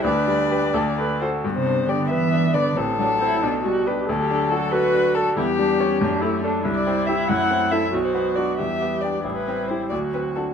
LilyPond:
<<
  \new Staff \with { instrumentName = "Violin" } { \time 6/8 \key g \major \tempo 4. = 92 d''2~ d''8 r8 | r16 c''8. d''8 e''4 d''8 | a'2~ a'8 r8 | r16 g'8. a'8 b'4 a'8 |
g'2~ g'8 r8 | r16 d''8. e''8 fis''4 e''8 | r16 c''8. d''8 e''4 d''8 | r16 b'8. c''8 d''8 b'8 a'8 | }
  \new Staff \with { instrumentName = "Viola" } { \time 6/8 \key g \major b'4. a'8 b'8 c''8 | b2. | c'8 d'8 e'8 d'8 fis'8 g'8 | a'4. fis'4. |
e'8 d'8 cis'8 d'8 e'8 d'8 | e'2. | fis'4. g'4. | e'4. fis'4. | }
  \new Staff \with { instrumentName = "Grand piano" } { \time 6/8 \key g \major d,8 g8 <g' b'>8 d,8 a8 <fis' a'>8 | g,8 d'8 g'8 b'8 d'8 b'8 | a,,8 fis8 <c' c''>8 b,,8 g8 <d' b'>8 | d,8 d'8 fis'8 a'8 d'8 a'8 |
e,8 g8 <cis' cis''>8 fis,8 a8 <d' a'>8 | c,8 c'8 <e' g'>8 fis,8 c'8 <e' a'>8 | b,,8 b8 <d' fis'>8 e,8 b8 <d' g'>8 | a,,8 c'8 <e' g'>8 d,8 c'8 <d' fis'>8 | }
  \new Staff \with { instrumentName = "Cello" } { \clef bass \time 6/8 \key g \major d'2~ d'8 r8 | r16 c8. d8 e4 d8 | a,2~ a,8 r8 | fis2. |
g4. a4. | g4. a4. | fis4. g4. | g4. fis4. | }
>>